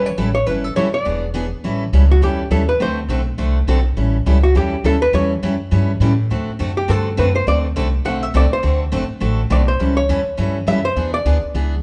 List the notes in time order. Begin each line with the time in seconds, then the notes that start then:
Already playing: E1
0.06 C#5
0.18 A1 E3 G3 C#4 E4 A4
0.35 C#5
0.47 G1 E3 G3 C#4 E4 A4 B4
0.64 A4
0.76 F#1 E3 G3 C#4 E4 A4 C#5
0.94 D5
1.05 E1 E3 B3 D4 G#4
1.33 E3 B3 D4 G#4 C#5
1.64 A1 E3 G3 C#4 E4 A4
1.93 C#2 E3 G3 C#4 E4 A4
2.11 F#4
2.21 E2 E3 G3 C#4 E4 G4 A4
2.51 D#2 E3 G3 C#4 E4 A4
2.69 B4
2.80 D2 D3 A3 C4 F#4 A4 C5
3.08 B1 D3 A3 C4 F#4 A4
3.38 C2 D3 A3 C4 F#4 A4
3.67 B1 D3 A3 C4 F#4 A4
3.97 A1 E3 G3 C#4 E4 A4
4.26 C#2 E3 G3 C#4 E4 A4
4.43 F#4
4.55 E2 E3 G3 C#4 E4 G4 A4
4.84 D2 E3 G3 C#4 E4 A4
5.02 B4
5.13 E2 E3 G3 C#4 E4 A4 C#5
5.43 F#2 E3 G3 C#4 E4 A4
5.71 G2 E3 G3 C#4 E4 A4
6.00 A2 E3 G3 C#4 E4 A4
6.30 D2 D3 A3 C4 F#4 A4
6.48 muted upright bass stroke
6.59 F#2 D3 A3 C4 F#4 A4
6.77 G4
6.88 G2 D3 A3 C4 F#4 A4
7.17 F#2 D3 A3 C4 F#4 A4 B4
7.36 C5
7.47 D2 D3 A3 C4 F#4 A4 D5
7.76 C2 D3 A3 C4 F#4 A4
8.05 B1 D3 A3 C4 F#4 A4 F#5
8.23 E5
8.34 C2 D3 A3 C4 F#4 A4 D5
8.53 C5
8.63 D2 D3 A3 C4 F#4 A4
8.92 G1 D3 A3 C4 F#4 A4
9.10 muted upright bass stroke
9.20 A1 D3 A3 C4 F#4 A4
9.50 B1 D3 A3 C4 F#4 A4 D5
9.68 C5
9.79 C#2 E3 G3 C#4 E4 A4
9.97 C#5
10.09 E2 E3 G3 C#4 E4 A4
10.27 muted upright bass stroke
10.37 G2 E3 G3 C#4 E4 A4
10.67 F#2 E3 G3 C#4 E4 A4 E5
10.85 C5
10.96 E2 E3 B3 D4 G#4
11.14 D5
11.25 D2 E3 B3 D4 G#4
11.43 muted upright bass stroke
11.54 C#2 E3 B3 D4 G#4